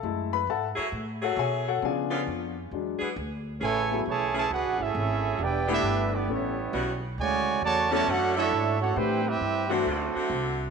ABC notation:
X:1
M:4/4
L:1/8
Q:"Swing" 1/4=134
K:F#m
V:1 name="Trumpet section"
z8 | z8 | [K:A] [EAcg]2 [EGca] [EGca] [DGBf] [CGAe]3 | [EBd=g] [D=GBe]2 [B,EGd] [B,EGc]3 z |
[Fcdg]2 [Fcda] [Fcda] [DAcf] [DAce]2 [DAcf] | [EB=c=g] [=C=GBe]2 [A,DFc]4 z |]
V:2 name="Grand piano"
[Aea] [Bb] [Aefa] z2 [FAcf] [Gceg] [FAcf] | [Gd^eg]2 z6 | [K:A] z [F,B,EG] z6 | z [A,D=GB]3 [B,EAc] z3 |
z3 [F,B,EA] z4 | [E,A,D=G] z2 [E,A,DF] z4 |]
V:3 name="Grand piano"
[G,A,E] z6 z | [^E,B,D]3 z [F,G,D] z3 | [K:A] z8 | z8 |
z8 | z8 |]
V:4 name="Saxophone section"
z3 [F,A,EG] z [F,A,EG]3 | z [D,B,C^E] z3 [=E,B,DG] z2 | [K:A] [E,A,CG] z2 [E,A,CG] z4 | z [E,B,D=G] z4 [C,=G,B,F] z |
z3 [D,A,CF]2 [D,FAc]3 | z3 [D,A,=CF]2 [D,A,CF]3 |]
V:5 name="Trombone section"
z8 | z8 | [K:A] [C,E,A,]2 [C,E,A,] [C,E,A,] F [A,CE]3 | [B,D=G] [=G,B,E]2 [G,B,D] [E,G,C]3 z |
[A,,C,G,]2 [C,F,A,] [C,F,A,] [A,CF] [A,DE]2 [A,CF] | [=CE=G] [=G,CE]2 [F,A,C]4 z |]
V:6 name="Upright bass" clef=bass
F,,2 G,, z A,,2 B,,2 | C,2 ^E,,2 =E,, z D,,2 | [K:A] A,,,2 B,,,2 (3C,, A,,, G,,, G,,,2 | E,,,2 =G,,,2 A,,,2 B,,,2 |
D,,2 E,,2 F,,2 G,,2 | A,,2 =G,,2 D,, z =C,,2 |]